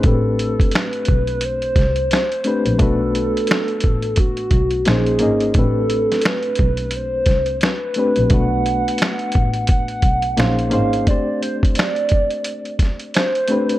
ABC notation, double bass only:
X:1
M:4/4
L:1/16
Q:"Swing 16ths" 1/4=87
K:Ador
V:1 name="Double bass" clef=bass
A,,,3 z3 B,,,4 C,,2 z3 _B,,, | B,,,3 z3 A,,,4 B,,,2 _B,,,2 _A,,,2 | A,,,3 z3 B,,,4 C,,2 z3 _B,,, | B,,,3 z3 A,,,4 B,,,2 _B,,,2 _A,,,2 |
z16 |]